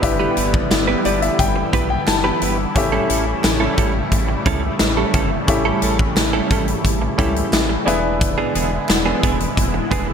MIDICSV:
0, 0, Header, 1, 7, 480
1, 0, Start_track
1, 0, Tempo, 681818
1, 20, Time_signature, 4, 2, 24, 8
1, 7134, End_track
2, 0, Start_track
2, 0, Title_t, "Grand piano"
2, 0, Program_c, 0, 0
2, 0, Control_c, 0, 64, 127
2, 14, Note_on_c, 0, 62, 77
2, 15, Note_on_c, 0, 64, 70
2, 20, Note_on_c, 0, 67, 68
2, 25, Note_on_c, 0, 71, 68
2, 29, Note_on_c, 0, 76, 84
2, 742, Note_on_c, 0, 74, 76
2, 851, Note_off_c, 0, 76, 0
2, 853, Note_off_c, 0, 74, 0
2, 861, Note_on_c, 0, 76, 71
2, 972, Note_off_c, 0, 76, 0
2, 982, Note_on_c, 0, 79, 76
2, 1316, Note_off_c, 0, 79, 0
2, 1338, Note_on_c, 0, 79, 75
2, 1451, Note_off_c, 0, 79, 0
2, 1460, Note_on_c, 0, 81, 74
2, 1572, Note_off_c, 0, 81, 0
2, 1580, Note_on_c, 0, 83, 74
2, 1909, Note_off_c, 0, 62, 0
2, 1910, Note_off_c, 0, 64, 0
2, 1912, Note_off_c, 0, 67, 0
2, 1915, Note_off_c, 0, 71, 0
2, 1915, Note_off_c, 0, 83, 0
2, 1935, Note_on_c, 0, 61, 78
2, 1940, Note_on_c, 0, 64, 65
2, 1946, Note_on_c, 0, 67, 71
2, 1948, Control_c, 0, 64, 0
2, 1949, Note_on_c, 0, 69, 68
2, 1953, Note_on_c, 0, 76, 83
2, 2079, Control_c, 0, 64, 127
2, 3830, Note_off_c, 0, 61, 0
2, 3832, Note_off_c, 0, 64, 0
2, 3835, Note_off_c, 0, 67, 0
2, 3837, Note_off_c, 0, 69, 0
2, 3838, Note_off_c, 0, 76, 0
2, 3853, Note_on_c, 0, 61, 75
2, 3857, Note_on_c, 0, 64, 71
2, 3862, Note_on_c, 0, 67, 71
2, 3864, Note_on_c, 0, 69, 70
2, 3869, Note_on_c, 0, 76, 83
2, 5033, Note_off_c, 0, 61, 0
2, 5035, Note_off_c, 0, 64, 0
2, 5037, Note_off_c, 0, 67, 0
2, 5038, Note_off_c, 0, 69, 0
2, 5041, Note_off_c, 0, 76, 0
2, 5052, Note_on_c, 0, 61, 57
2, 5054, Note_on_c, 0, 64, 52
2, 5057, Note_on_c, 0, 67, 52
2, 5058, Note_on_c, 0, 69, 52
2, 5061, Note_on_c, 0, 76, 62
2, 5521, Note_off_c, 0, 64, 0
2, 5529, Note_on_c, 0, 62, 75
2, 5532, Note_on_c, 0, 64, 69
2, 5536, Note_off_c, 0, 61, 0
2, 5536, Note_off_c, 0, 76, 0
2, 5537, Note_on_c, 0, 68, 70
2, 5539, Note_off_c, 0, 67, 0
2, 5539, Note_off_c, 0, 69, 0
2, 5540, Note_on_c, 0, 71, 69
2, 5546, Note_on_c, 0, 76, 82
2, 5549, Control_c, 0, 64, 0
2, 5672, Control_c, 0, 64, 127
2, 7134, Note_off_c, 0, 62, 0
2, 7134, Note_off_c, 0, 64, 0
2, 7134, Note_off_c, 0, 68, 0
2, 7134, Note_off_c, 0, 71, 0
2, 7134, Note_off_c, 0, 76, 0
2, 7134, End_track
3, 0, Start_track
3, 0, Title_t, "Clean electric guitar"
3, 0, Program_c, 1, 27
3, 137, Note_on_c, 1, 71, 74
3, 141, Note_on_c, 1, 67, 76
3, 144, Note_on_c, 1, 64, 69
3, 147, Note_on_c, 1, 59, 62
3, 250, Note_off_c, 1, 59, 0
3, 253, Note_off_c, 1, 64, 0
3, 257, Note_off_c, 1, 67, 0
3, 258, Note_on_c, 1, 59, 63
3, 259, Note_off_c, 1, 71, 0
3, 262, Note_on_c, 1, 64, 59
3, 266, Note_on_c, 1, 67, 68
3, 268, Note_on_c, 1, 71, 69
3, 370, Note_off_c, 1, 59, 0
3, 371, Note_off_c, 1, 64, 0
3, 372, Note_off_c, 1, 71, 0
3, 373, Note_off_c, 1, 67, 0
3, 616, Note_on_c, 1, 71, 61
3, 619, Note_on_c, 1, 67, 57
3, 622, Note_on_c, 1, 64, 55
3, 625, Note_on_c, 1, 59, 50
3, 728, Note_off_c, 1, 59, 0
3, 729, Note_off_c, 1, 71, 0
3, 730, Note_off_c, 1, 67, 0
3, 731, Note_off_c, 1, 64, 0
3, 736, Note_on_c, 1, 59, 83
3, 739, Note_on_c, 1, 64, 81
3, 742, Note_on_c, 1, 67, 90
3, 745, Note_on_c, 1, 71, 93
3, 849, Note_off_c, 1, 71, 0
3, 851, Note_off_c, 1, 67, 0
3, 855, Note_off_c, 1, 64, 0
3, 879, Note_off_c, 1, 59, 0
3, 1218, Note_on_c, 1, 59, 85
3, 1222, Note_on_c, 1, 64, 97
3, 1225, Note_on_c, 1, 67, 92
3, 1227, Note_on_c, 1, 71, 102
3, 1330, Note_off_c, 1, 71, 0
3, 1334, Note_off_c, 1, 67, 0
3, 1337, Note_off_c, 1, 64, 0
3, 1360, Note_off_c, 1, 59, 0
3, 1577, Note_on_c, 1, 71, 82
3, 1580, Note_on_c, 1, 67, 82
3, 1582, Note_on_c, 1, 64, 69
3, 1586, Note_on_c, 1, 59, 68
3, 1690, Note_off_c, 1, 59, 0
3, 1694, Note_off_c, 1, 64, 0
3, 1697, Note_off_c, 1, 67, 0
3, 1699, Note_off_c, 1, 71, 0
3, 1699, Note_on_c, 1, 59, 59
3, 1703, Note_on_c, 1, 64, 60
3, 1705, Note_on_c, 1, 67, 67
3, 1708, Note_on_c, 1, 71, 65
3, 1808, Note_off_c, 1, 71, 0
3, 1810, Note_off_c, 1, 59, 0
3, 1812, Note_off_c, 1, 64, 0
3, 1812, Note_off_c, 1, 67, 0
3, 2058, Note_on_c, 1, 69, 81
3, 2061, Note_on_c, 1, 64, 73
3, 2063, Note_on_c, 1, 61, 70
3, 2067, Note_on_c, 1, 55, 64
3, 2167, Note_off_c, 1, 55, 0
3, 2171, Note_off_c, 1, 61, 0
3, 2174, Note_off_c, 1, 64, 0
3, 2176, Note_off_c, 1, 69, 0
3, 2176, Note_on_c, 1, 55, 62
3, 2180, Note_on_c, 1, 61, 65
3, 2183, Note_on_c, 1, 64, 70
3, 2185, Note_on_c, 1, 69, 70
3, 2288, Note_off_c, 1, 55, 0
3, 2288, Note_off_c, 1, 69, 0
3, 2290, Note_off_c, 1, 61, 0
3, 2292, Note_off_c, 1, 64, 0
3, 2535, Note_on_c, 1, 69, 67
3, 2538, Note_on_c, 1, 64, 63
3, 2541, Note_on_c, 1, 61, 61
3, 2543, Note_on_c, 1, 55, 57
3, 2647, Note_off_c, 1, 55, 0
3, 2648, Note_off_c, 1, 69, 0
3, 2650, Note_off_c, 1, 64, 0
3, 2651, Note_off_c, 1, 61, 0
3, 2655, Note_on_c, 1, 55, 92
3, 2659, Note_on_c, 1, 61, 97
3, 2663, Note_on_c, 1, 64, 99
3, 2666, Note_on_c, 1, 69, 97
3, 2772, Note_off_c, 1, 69, 0
3, 2775, Note_off_c, 1, 64, 0
3, 2778, Note_off_c, 1, 61, 0
3, 2799, Note_off_c, 1, 55, 0
3, 3139, Note_on_c, 1, 55, 82
3, 3141, Note_on_c, 1, 61, 86
3, 3145, Note_on_c, 1, 64, 88
3, 3147, Note_on_c, 1, 69, 89
3, 3252, Note_off_c, 1, 69, 0
3, 3255, Note_off_c, 1, 64, 0
3, 3258, Note_off_c, 1, 61, 0
3, 3280, Note_off_c, 1, 55, 0
3, 3500, Note_on_c, 1, 69, 65
3, 3504, Note_on_c, 1, 64, 55
3, 3505, Note_on_c, 1, 61, 58
3, 3509, Note_on_c, 1, 55, 57
3, 3608, Note_off_c, 1, 55, 0
3, 3611, Note_off_c, 1, 69, 0
3, 3612, Note_off_c, 1, 64, 0
3, 3613, Note_off_c, 1, 61, 0
3, 3617, Note_on_c, 1, 55, 81
3, 3621, Note_on_c, 1, 61, 80
3, 3624, Note_on_c, 1, 64, 89
3, 3627, Note_on_c, 1, 69, 97
3, 3733, Note_off_c, 1, 69, 0
3, 3736, Note_off_c, 1, 64, 0
3, 3738, Note_off_c, 1, 61, 0
3, 3760, Note_off_c, 1, 55, 0
3, 3979, Note_on_c, 1, 69, 85
3, 3981, Note_on_c, 1, 64, 70
3, 3985, Note_on_c, 1, 61, 74
3, 3988, Note_on_c, 1, 55, 63
3, 4092, Note_off_c, 1, 55, 0
3, 4096, Note_off_c, 1, 61, 0
3, 4098, Note_off_c, 1, 64, 0
3, 4100, Note_off_c, 1, 69, 0
3, 4100, Note_on_c, 1, 55, 65
3, 4104, Note_on_c, 1, 61, 69
3, 4107, Note_on_c, 1, 64, 75
3, 4109, Note_on_c, 1, 69, 72
3, 4211, Note_off_c, 1, 55, 0
3, 4212, Note_off_c, 1, 69, 0
3, 4213, Note_off_c, 1, 61, 0
3, 4214, Note_off_c, 1, 64, 0
3, 4458, Note_on_c, 1, 69, 75
3, 4461, Note_on_c, 1, 64, 67
3, 4464, Note_on_c, 1, 61, 60
3, 4468, Note_on_c, 1, 55, 61
3, 4570, Note_off_c, 1, 69, 0
3, 4571, Note_off_c, 1, 64, 0
3, 4572, Note_off_c, 1, 55, 0
3, 4573, Note_off_c, 1, 61, 0
3, 4581, Note_on_c, 1, 55, 86
3, 4584, Note_on_c, 1, 61, 83
3, 4587, Note_on_c, 1, 64, 85
3, 4590, Note_on_c, 1, 69, 97
3, 4690, Note_off_c, 1, 69, 0
3, 4693, Note_off_c, 1, 64, 0
3, 4697, Note_off_c, 1, 61, 0
3, 4721, Note_off_c, 1, 55, 0
3, 5057, Note_on_c, 1, 55, 89
3, 5060, Note_on_c, 1, 61, 93
3, 5064, Note_on_c, 1, 64, 92
3, 5066, Note_on_c, 1, 69, 98
3, 5167, Note_off_c, 1, 69, 0
3, 5171, Note_off_c, 1, 64, 0
3, 5175, Note_off_c, 1, 61, 0
3, 5200, Note_off_c, 1, 55, 0
3, 5534, Note_on_c, 1, 52, 77
3, 5539, Note_on_c, 1, 59, 88
3, 5542, Note_on_c, 1, 62, 80
3, 5544, Note_on_c, 1, 68, 88
3, 5650, Note_off_c, 1, 68, 0
3, 5653, Note_off_c, 1, 62, 0
3, 5656, Note_off_c, 1, 59, 0
3, 5678, Note_off_c, 1, 52, 0
3, 5897, Note_on_c, 1, 68, 82
3, 5900, Note_on_c, 1, 62, 68
3, 5903, Note_on_c, 1, 59, 68
3, 5906, Note_on_c, 1, 52, 66
3, 6006, Note_off_c, 1, 52, 0
3, 6011, Note_off_c, 1, 59, 0
3, 6013, Note_off_c, 1, 62, 0
3, 6014, Note_on_c, 1, 52, 74
3, 6015, Note_off_c, 1, 68, 0
3, 6019, Note_on_c, 1, 59, 68
3, 6022, Note_on_c, 1, 62, 74
3, 6024, Note_on_c, 1, 68, 70
3, 6128, Note_off_c, 1, 52, 0
3, 6130, Note_off_c, 1, 59, 0
3, 6130, Note_off_c, 1, 68, 0
3, 6131, Note_off_c, 1, 62, 0
3, 6375, Note_on_c, 1, 68, 68
3, 6378, Note_on_c, 1, 62, 69
3, 6382, Note_on_c, 1, 59, 64
3, 6384, Note_on_c, 1, 52, 54
3, 6485, Note_off_c, 1, 52, 0
3, 6488, Note_off_c, 1, 68, 0
3, 6490, Note_off_c, 1, 62, 0
3, 6491, Note_off_c, 1, 59, 0
3, 6494, Note_on_c, 1, 52, 80
3, 6499, Note_on_c, 1, 59, 90
3, 6501, Note_on_c, 1, 62, 90
3, 6503, Note_on_c, 1, 68, 84
3, 6608, Note_off_c, 1, 68, 0
3, 6613, Note_off_c, 1, 62, 0
3, 6615, Note_off_c, 1, 59, 0
3, 6638, Note_off_c, 1, 52, 0
3, 6976, Note_on_c, 1, 52, 84
3, 6980, Note_on_c, 1, 59, 84
3, 6982, Note_on_c, 1, 62, 88
3, 6984, Note_on_c, 1, 68, 94
3, 7090, Note_off_c, 1, 68, 0
3, 7093, Note_off_c, 1, 62, 0
3, 7096, Note_off_c, 1, 59, 0
3, 7119, Note_off_c, 1, 52, 0
3, 7134, End_track
4, 0, Start_track
4, 0, Title_t, "Analog synth pad"
4, 0, Program_c, 2, 89
4, 0, Note_on_c, 2, 50, 77
4, 0, Note_on_c, 2, 52, 70
4, 0, Note_on_c, 2, 55, 73
4, 0, Note_on_c, 2, 59, 73
4, 0, Note_on_c, 2, 64, 84
4, 1912, Note_off_c, 2, 59, 0
4, 1913, Note_off_c, 2, 50, 0
4, 1914, Note_off_c, 2, 55, 0
4, 1939, Note_on_c, 2, 55, 71
4, 1941, Note_on_c, 2, 57, 76
4, 1942, Note_on_c, 2, 49, 77
4, 5512, Note_off_c, 2, 55, 0
4, 5513, Note_off_c, 2, 49, 0
4, 5513, Note_off_c, 2, 57, 0
4, 5513, Note_off_c, 2, 64, 0
4, 5515, Note_off_c, 2, 52, 0
4, 5537, Note_on_c, 2, 64, 85
4, 5539, Note_on_c, 2, 52, 72
4, 5540, Note_on_c, 2, 50, 79
4, 5540, Note_on_c, 2, 59, 76
4, 5541, Note_on_c, 2, 56, 74
4, 7134, Note_off_c, 2, 50, 0
4, 7134, Note_off_c, 2, 52, 0
4, 7134, Note_off_c, 2, 56, 0
4, 7134, Note_off_c, 2, 59, 0
4, 7134, Note_off_c, 2, 64, 0
4, 7134, End_track
5, 0, Start_track
5, 0, Title_t, "Analog synth bass"
5, 0, Program_c, 3, 38
5, 20, Note_on_c, 3, 31, 96
5, 193, Note_off_c, 3, 31, 0
5, 261, Note_on_c, 3, 31, 90
5, 434, Note_off_c, 3, 31, 0
5, 501, Note_on_c, 3, 31, 103
5, 674, Note_off_c, 3, 31, 0
5, 744, Note_on_c, 3, 31, 102
5, 915, Note_off_c, 3, 31, 0
5, 980, Note_on_c, 3, 31, 109
5, 1153, Note_off_c, 3, 31, 0
5, 1221, Note_on_c, 3, 35, 93
5, 1394, Note_off_c, 3, 35, 0
5, 1462, Note_on_c, 3, 31, 109
5, 1634, Note_off_c, 3, 31, 0
5, 1703, Note_on_c, 3, 31, 92
5, 1875, Note_off_c, 3, 31, 0
5, 1941, Note_on_c, 3, 33, 106
5, 2113, Note_off_c, 3, 33, 0
5, 2183, Note_on_c, 3, 33, 90
5, 2355, Note_off_c, 3, 33, 0
5, 2421, Note_on_c, 3, 33, 104
5, 2594, Note_off_c, 3, 33, 0
5, 2661, Note_on_c, 3, 33, 108
5, 2834, Note_off_c, 3, 33, 0
5, 2899, Note_on_c, 3, 33, 105
5, 3072, Note_off_c, 3, 33, 0
5, 3138, Note_on_c, 3, 37, 86
5, 3312, Note_off_c, 3, 37, 0
5, 3381, Note_on_c, 3, 33, 105
5, 3554, Note_off_c, 3, 33, 0
5, 3618, Note_on_c, 3, 31, 92
5, 3792, Note_off_c, 3, 31, 0
5, 3859, Note_on_c, 3, 33, 106
5, 4033, Note_off_c, 3, 33, 0
5, 4101, Note_on_c, 3, 33, 98
5, 4273, Note_off_c, 3, 33, 0
5, 4340, Note_on_c, 3, 33, 90
5, 4513, Note_off_c, 3, 33, 0
5, 4581, Note_on_c, 3, 33, 106
5, 4754, Note_off_c, 3, 33, 0
5, 4820, Note_on_c, 3, 33, 109
5, 4993, Note_off_c, 3, 33, 0
5, 5059, Note_on_c, 3, 37, 92
5, 5232, Note_off_c, 3, 37, 0
5, 5300, Note_on_c, 3, 33, 112
5, 5473, Note_off_c, 3, 33, 0
5, 5540, Note_on_c, 3, 28, 98
5, 5886, Note_off_c, 3, 28, 0
5, 6021, Note_on_c, 3, 28, 89
5, 6193, Note_off_c, 3, 28, 0
5, 6262, Note_on_c, 3, 28, 102
5, 6434, Note_off_c, 3, 28, 0
5, 6501, Note_on_c, 3, 28, 104
5, 6674, Note_off_c, 3, 28, 0
5, 6741, Note_on_c, 3, 28, 108
5, 6913, Note_off_c, 3, 28, 0
5, 6980, Note_on_c, 3, 28, 83
5, 7134, Note_off_c, 3, 28, 0
5, 7134, End_track
6, 0, Start_track
6, 0, Title_t, "Muted clean electric guitar strokes"
6, 17, Note_on_c, 9, 29, 51
6, 88, Note_off_c, 9, 29, 0
6, 495, Note_on_c, 9, 29, 36
6, 566, Note_off_c, 9, 29, 0
6, 857, Note_on_c, 9, 29, 48
6, 927, Note_off_c, 9, 29, 0
6, 1097, Note_on_c, 9, 29, 45
6, 1167, Note_off_c, 9, 29, 0
6, 1339, Note_on_c, 9, 29, 42
6, 1409, Note_off_c, 9, 29, 0
6, 1456, Note_on_c, 9, 29, 46
6, 1526, Note_off_c, 9, 29, 0
6, 1939, Note_on_c, 9, 29, 48
6, 2009, Note_off_c, 9, 29, 0
6, 2297, Note_on_c, 9, 29, 48
6, 2367, Note_off_c, 9, 29, 0
6, 2416, Note_on_c, 9, 29, 45
6, 2486, Note_off_c, 9, 29, 0
6, 2780, Note_on_c, 9, 29, 57
6, 2850, Note_off_c, 9, 29, 0
6, 3017, Note_on_c, 9, 29, 51
6, 3087, Note_off_c, 9, 29, 0
6, 3260, Note_on_c, 9, 29, 45
6, 3330, Note_off_c, 9, 29, 0
6, 3379, Note_on_c, 9, 29, 38
6, 3450, Note_off_c, 9, 29, 0
6, 3741, Note_on_c, 9, 29, 49
6, 3812, Note_off_c, 9, 29, 0
6, 3863, Note_on_c, 9, 29, 39
6, 3933, Note_off_c, 9, 29, 0
6, 4338, Note_on_c, 9, 29, 45
6, 4408, Note_off_c, 9, 29, 0
6, 4699, Note_on_c, 9, 29, 51
6, 4769, Note_off_c, 9, 29, 0
6, 4940, Note_on_c, 9, 29, 38
6, 5010, Note_off_c, 9, 29, 0
6, 5176, Note_on_c, 9, 29, 47
6, 5246, Note_off_c, 9, 29, 0
6, 5417, Note_on_c, 9, 29, 52
6, 5487, Note_off_c, 9, 29, 0
6, 5658, Note_on_c, 9, 29, 57
6, 5729, Note_off_c, 9, 29, 0
6, 5775, Note_on_c, 9, 29, 47
6, 5845, Note_off_c, 9, 29, 0
6, 6138, Note_on_c, 9, 29, 37
6, 6209, Note_off_c, 9, 29, 0
6, 6255, Note_on_c, 9, 29, 53
6, 6325, Note_off_c, 9, 29, 0
6, 6617, Note_on_c, 9, 29, 42
6, 6687, Note_off_c, 9, 29, 0
6, 6858, Note_on_c, 9, 29, 47
6, 6929, Note_off_c, 9, 29, 0
6, 7098, Note_on_c, 9, 29, 49
6, 7134, Note_off_c, 9, 29, 0
6, 7134, End_track
7, 0, Start_track
7, 0, Title_t, "Drums"
7, 21, Note_on_c, 9, 36, 106
7, 21, Note_on_c, 9, 42, 91
7, 91, Note_off_c, 9, 36, 0
7, 91, Note_off_c, 9, 42, 0
7, 258, Note_on_c, 9, 42, 82
7, 328, Note_off_c, 9, 42, 0
7, 379, Note_on_c, 9, 36, 109
7, 450, Note_off_c, 9, 36, 0
7, 501, Note_on_c, 9, 54, 70
7, 502, Note_on_c, 9, 38, 108
7, 502, Note_on_c, 9, 42, 90
7, 504, Note_on_c, 9, 39, 85
7, 571, Note_off_c, 9, 54, 0
7, 572, Note_off_c, 9, 38, 0
7, 572, Note_off_c, 9, 42, 0
7, 575, Note_off_c, 9, 39, 0
7, 738, Note_on_c, 9, 42, 77
7, 809, Note_off_c, 9, 42, 0
7, 860, Note_on_c, 9, 42, 54
7, 930, Note_off_c, 9, 42, 0
7, 979, Note_on_c, 9, 36, 92
7, 980, Note_on_c, 9, 42, 90
7, 1050, Note_off_c, 9, 36, 0
7, 1051, Note_off_c, 9, 42, 0
7, 1220, Note_on_c, 9, 36, 97
7, 1223, Note_on_c, 9, 42, 74
7, 1291, Note_off_c, 9, 36, 0
7, 1294, Note_off_c, 9, 42, 0
7, 1461, Note_on_c, 9, 38, 118
7, 1461, Note_on_c, 9, 39, 81
7, 1462, Note_on_c, 9, 42, 93
7, 1463, Note_on_c, 9, 54, 70
7, 1532, Note_off_c, 9, 38, 0
7, 1532, Note_off_c, 9, 39, 0
7, 1532, Note_off_c, 9, 42, 0
7, 1533, Note_off_c, 9, 54, 0
7, 1700, Note_on_c, 9, 42, 78
7, 1771, Note_off_c, 9, 42, 0
7, 1940, Note_on_c, 9, 42, 92
7, 1941, Note_on_c, 9, 36, 114
7, 2010, Note_off_c, 9, 42, 0
7, 2011, Note_off_c, 9, 36, 0
7, 2180, Note_on_c, 9, 42, 84
7, 2250, Note_off_c, 9, 42, 0
7, 2421, Note_on_c, 9, 54, 69
7, 2422, Note_on_c, 9, 38, 111
7, 2422, Note_on_c, 9, 39, 84
7, 2422, Note_on_c, 9, 42, 87
7, 2491, Note_off_c, 9, 54, 0
7, 2492, Note_off_c, 9, 38, 0
7, 2492, Note_off_c, 9, 39, 0
7, 2492, Note_off_c, 9, 42, 0
7, 2658, Note_on_c, 9, 42, 75
7, 2661, Note_on_c, 9, 36, 93
7, 2728, Note_off_c, 9, 42, 0
7, 2732, Note_off_c, 9, 36, 0
7, 2899, Note_on_c, 9, 36, 92
7, 2899, Note_on_c, 9, 42, 90
7, 2969, Note_off_c, 9, 36, 0
7, 2970, Note_off_c, 9, 42, 0
7, 3138, Note_on_c, 9, 42, 70
7, 3139, Note_on_c, 9, 36, 99
7, 3208, Note_off_c, 9, 42, 0
7, 3209, Note_off_c, 9, 36, 0
7, 3375, Note_on_c, 9, 38, 119
7, 3375, Note_on_c, 9, 42, 88
7, 3376, Note_on_c, 9, 54, 74
7, 3381, Note_on_c, 9, 39, 76
7, 3445, Note_off_c, 9, 38, 0
7, 3445, Note_off_c, 9, 42, 0
7, 3447, Note_off_c, 9, 54, 0
7, 3452, Note_off_c, 9, 39, 0
7, 3616, Note_on_c, 9, 42, 78
7, 3619, Note_on_c, 9, 36, 97
7, 3686, Note_off_c, 9, 42, 0
7, 3689, Note_off_c, 9, 36, 0
7, 3857, Note_on_c, 9, 42, 92
7, 3860, Note_on_c, 9, 36, 114
7, 3927, Note_off_c, 9, 42, 0
7, 3930, Note_off_c, 9, 36, 0
7, 4096, Note_on_c, 9, 42, 80
7, 4167, Note_off_c, 9, 42, 0
7, 4219, Note_on_c, 9, 36, 110
7, 4290, Note_off_c, 9, 36, 0
7, 4340, Note_on_c, 9, 54, 64
7, 4341, Note_on_c, 9, 38, 114
7, 4341, Note_on_c, 9, 42, 96
7, 4342, Note_on_c, 9, 39, 87
7, 4411, Note_off_c, 9, 38, 0
7, 4411, Note_off_c, 9, 54, 0
7, 4412, Note_off_c, 9, 42, 0
7, 4413, Note_off_c, 9, 39, 0
7, 4580, Note_on_c, 9, 42, 77
7, 4581, Note_on_c, 9, 36, 104
7, 4650, Note_off_c, 9, 42, 0
7, 4652, Note_off_c, 9, 36, 0
7, 4701, Note_on_c, 9, 42, 54
7, 4771, Note_off_c, 9, 42, 0
7, 4820, Note_on_c, 9, 36, 93
7, 4824, Note_on_c, 9, 42, 87
7, 4890, Note_off_c, 9, 36, 0
7, 4895, Note_off_c, 9, 42, 0
7, 5060, Note_on_c, 9, 36, 96
7, 5064, Note_on_c, 9, 42, 72
7, 5130, Note_off_c, 9, 36, 0
7, 5134, Note_off_c, 9, 42, 0
7, 5183, Note_on_c, 9, 42, 59
7, 5254, Note_off_c, 9, 42, 0
7, 5302, Note_on_c, 9, 38, 120
7, 5302, Note_on_c, 9, 39, 83
7, 5302, Note_on_c, 9, 42, 88
7, 5303, Note_on_c, 9, 54, 70
7, 5372, Note_off_c, 9, 38, 0
7, 5372, Note_off_c, 9, 42, 0
7, 5373, Note_off_c, 9, 39, 0
7, 5374, Note_off_c, 9, 54, 0
7, 5544, Note_on_c, 9, 42, 76
7, 5614, Note_off_c, 9, 42, 0
7, 5781, Note_on_c, 9, 36, 111
7, 5782, Note_on_c, 9, 42, 88
7, 5852, Note_off_c, 9, 36, 0
7, 5852, Note_off_c, 9, 42, 0
7, 6020, Note_on_c, 9, 42, 86
7, 6091, Note_off_c, 9, 42, 0
7, 6258, Note_on_c, 9, 39, 85
7, 6263, Note_on_c, 9, 54, 68
7, 6264, Note_on_c, 9, 38, 113
7, 6264, Note_on_c, 9, 42, 85
7, 6328, Note_off_c, 9, 39, 0
7, 6333, Note_off_c, 9, 54, 0
7, 6334, Note_off_c, 9, 38, 0
7, 6334, Note_off_c, 9, 42, 0
7, 6501, Note_on_c, 9, 36, 98
7, 6501, Note_on_c, 9, 42, 81
7, 6571, Note_off_c, 9, 36, 0
7, 6571, Note_off_c, 9, 42, 0
7, 6620, Note_on_c, 9, 42, 55
7, 6690, Note_off_c, 9, 42, 0
7, 6740, Note_on_c, 9, 36, 88
7, 6742, Note_on_c, 9, 42, 91
7, 6810, Note_off_c, 9, 36, 0
7, 6813, Note_off_c, 9, 42, 0
7, 6980, Note_on_c, 9, 36, 93
7, 6983, Note_on_c, 9, 42, 69
7, 7050, Note_off_c, 9, 36, 0
7, 7054, Note_off_c, 9, 42, 0
7, 7134, End_track
0, 0, End_of_file